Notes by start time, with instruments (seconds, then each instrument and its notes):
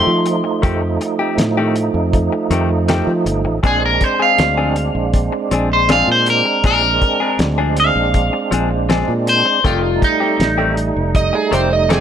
Already playing: clean electric guitar D#3 A3 C4 G4 C6, tonewheel organ F3 A3 D#4
0.07 fingered electric bass F3
0.25 muted clean electric guitar stroke, closed hi-hat
0.44 muted clean electric guitar stroke
0.62 fingered electric bass F2, clean electric guitar D#3 A3 C4 G4, kick, closed hi-hat
0.82 muted clean electric guitar stroke
1.01 muted clean electric guitar stroke, closed hi-hat
1.19 clean electric guitar A3 C4 G4
1.38 fingered electric bass A2, muted clean electric guitar stroke, snare, closed hi-hat
1.57 clean electric guitar D#3 A3 C4 G4
1.76 muted clean electric guitar stroke, closed hi-hat
1.94 fingered electric bass F2
2.13 kick, closed hi-hat
2.33 muted clean electric guitar stroke
2.50 fingered electric bass F2, clean electric guitar D#3 A3 C4 G4, closed hi-hat
2.70 muted clean electric guitar stroke
2.88 clean electric guitar D#3 A3 C4 G4, snare, closed hi-hat
3.07 fingered electric bass F3
3.26 fingered electric bass G1, muted clean electric guitar stroke, closed hi-hat
3.44 fingered electric bass A1, muted clean electric guitar stroke
3.63 fingered electric bass A#1, clean electric guitar F3 C4 D4 G#4, tonewheel organ G#3 C4 D4, kick, closed hi-hat
3.82 clean electric guitar A#4, muted clean electric guitar stroke
4.01 clean electric guitar C5, muted clean electric guitar stroke, kick, closed hi-hat
4.20 clean electric guitar C4 D4 G#4 F5
4.38 fingered electric bass D2, muted clean electric guitar stroke, snare, closed hi-hat
4.57 clean electric guitar F3 C4 D4 G#4
4.76 muted clean electric guitar stroke, closed hi-hat
4.95 fingered electric bass A#1
5.14 kick, closed hi-hat
5.33 muted clean electric guitar stroke
5.51 fingered electric bass A#1, clean electric guitar F3 C4 D4 G#4, closed hi-hat
5.70 clean electric guitar C5, muted clean electric guitar stroke
5.89 clean electric guitar F3 C4 D4 G#4 F5, snare, closed hi-hat
6.08 fingered electric bass A#2, clean electric guitar C5
6.26 clean electric guitar A#4, muted clean electric guitar stroke, closed hi-hat
6.45 muted clean electric guitar stroke
6.64 fingered electric bass A#1, clean electric guitar F3 C4 D4 G#4 A#4, kick, closed hi-hat
6.83 muted clean electric guitar stroke
7.02 muted clean electric guitar stroke, kick, closed hi-hat
7.20 clean electric guitar C4 D4 G#4
7.39 fingered electric bass D2, muted clean electric guitar stroke, snare, closed hi-hat
7.58 clean electric guitar F3 C4 D4 G#4
7.77 clean electric guitar F5, muted clean electric guitar stroke, closed hi-hat
7.96 fingered electric bass A#1
8.14 kick, closed hi-hat
8.33 muted clean electric guitar stroke
8.51 fingered electric bass A#1, clean electric guitar F3 C4 D4 G#4, closed hi-hat
8.71 muted clean electric guitar stroke
8.89 clean electric guitar F3 C4 D4 G#4, snare, closed hi-hat
9.08 fingered electric bass A#2
9.27 clean electric guitar C5, muted clean electric guitar stroke, closed hi-hat
9.45 muted clean electric guitar stroke
9.64 fingered electric bass F1, clean electric guitar D#3 A3 C4 F4 G4, tonewheel organ G3 A3 D#4, kick, closed hi-hat
9.83 muted clean electric guitar stroke
10.02 clean electric guitar D#4, muted clean electric guitar stroke, kick, closed hi-hat
10.20 clean electric guitar A3 C4 G4
10.39 fingered electric bass A1, muted clean electric guitar stroke, snare, closed hi-hat
10.58 clean electric guitar D#3 A3 C4 G4
10.77 muted clean electric guitar stroke, closed hi-hat
10.96 fingered electric bass F1
11.15 electric slide guitar D#5, kick, closed hi-hat
11.33 electric slide guitar G#4, muted clean electric guitar stroke
11.51 fingered electric bass F1, clean electric guitar D#3 A3 C4 G4, electric slide guitar C5, closed hi-hat
11.71 electric slide guitar D#5, muted clean electric guitar stroke
11.89 clean electric guitar D#3 A3 C4 G4, electric slide guitar G#4, snare, closed hi-hat